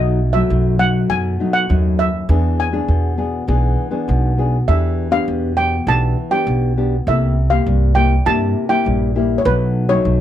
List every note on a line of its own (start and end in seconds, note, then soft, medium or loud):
0.00 0.41 B1 medium
0.00 0.48 B2 medium
0.00 0.19 F#3 medium
0.00 0.19 A3 medium
0.00 0.19 D#4 medium
0.00 0.32 D#5 loud
0.33 0.75 F#3 medium
0.33 0.75 A3 medium
0.33 0.80 E5 medium
0.50 1.01 B1 medium
0.50 1.07 F#2 medium
0.79 1.35 F#3 medium
0.79 1.35 A3 medium
0.79 1.35 D#4 medium
0.79 0.93 F#5 medium
1.10 1.35 F#2 loud
1.10 1.67 B2 medium
1.10 1.52 G#5 loud
1.40 1.65 F#3 medium
1.40 1.65 A3 medium
1.40 1.65 D#4 medium
1.53 1.96 F#5 medium
1.69 2.20 D#2 medium
1.69 2.26 F#2 medium
1.69 2.08 F#3 soft
1.69 2.08 A3 medium
1.69 2.08 D#4 medium
1.99 2.61 E5 medium
2.29 2.80 E2 medium
2.29 2.86 E3 medium
2.29 2.69 B3 medium
2.29 2.69 D4 medium
2.29 2.70 G#4 medium
2.60 3.75 G#5 medium
2.72 3.13 B3 medium
2.72 3.14 D4 medium
2.72 3.14 G#4 medium
2.88 3.39 E2 medium
2.88 3.46 B2 soft
3.17 3.43 B3 medium
3.17 3.43 D4 medium
3.17 3.44 G#4 medium
3.48 3.74 B1 medium
3.48 4.05 E3 medium
3.48 3.88 B3 medium
3.48 3.88 D4 medium
3.48 3.89 G#4 medium
3.91 4.32 B3 medium
3.91 4.32 D4 medium
3.91 4.33 G#4 medium
4.08 4.59 B1 medium
4.08 4.65 B2 medium
4.38 4.56 B3 medium
4.38 4.56 D4 medium
4.38 4.56 G#4 medium
4.68 5.19 E2 medium
4.68 5.25 E3 medium
4.68 5.08 B3 medium
4.68 5.08 D4 medium
4.68 5.09 G4 medium
4.68 5.10 E5 medium
5.11 5.52 B3 medium
5.11 5.52 D4 medium
5.11 5.52 G4 medium
5.11 5.54 F5 medium
5.28 5.79 E2 medium
5.28 5.85 B2 soft
5.57 5.75 B3 medium
5.57 5.75 D4 medium
5.57 5.75 G4 medium
5.57 5.88 G5 medium
5.87 6.13 B1 loud
5.87 6.44 E3 medium
5.87 6.15 B3 medium
5.87 6.16 D4 medium
5.87 6.16 G4 medium
5.87 6.34 A5 loud
6.31 6.72 B3 medium
6.31 6.72 D4 medium
6.31 6.72 G4 medium
6.31 6.73 G5 medium
6.47 6.98 B1 medium
6.47 7.04 B2 medium
6.77 6.95 B3 medium
6.77 6.95 D4 medium
6.77 6.95 G4 medium
7.07 7.58 C2 medium
7.07 7.64 C3 medium
7.07 7.35 A#3 medium
7.07 7.36 E4 medium
7.07 7.36 G4 medium
7.07 7.49 E5 medium
7.50 7.91 A#3 medium
7.50 7.91 G4 medium
7.50 7.93 F5 medium
7.66 8.17 C2 medium
7.66 8.23 G2 medium
7.95 8.13 A#3 medium
7.95 8.14 E4 soft
7.95 8.14 G4 medium
7.95 8.09 G5 medium
8.26 8.52 G2 loud
8.26 8.83 C3 medium
8.26 8.66 A#3 medium
8.26 8.66 E4 medium
8.26 8.66 G4 medium
8.26 8.68 A5 loud
8.69 9.10 A#3 medium
8.69 9.10 E4 medium
8.69 9.10 G4 medium
8.69 9.12 G5 medium
8.85 9.37 A#1 medium
8.85 9.42 G2 medium
9.15 9.41 A#3 medium
9.15 9.41 E4 medium
9.15 9.41 G4 medium
9.38 9.45 C#5 medium
9.45 9.96 B1 loud
9.45 10.02 B2 medium
9.45 9.86 F#3 medium
9.45 9.86 A3 medium
9.45 9.86 D#4 medium
9.45 9.87 B4 loud
9.89 10.21 F#3 medium
9.89 10.21 A3 medium
9.89 10.21 D#4 medium
9.89 10.21 C#5 loud
10.05 10.21 B1 medium
10.05 10.21 F#2 medium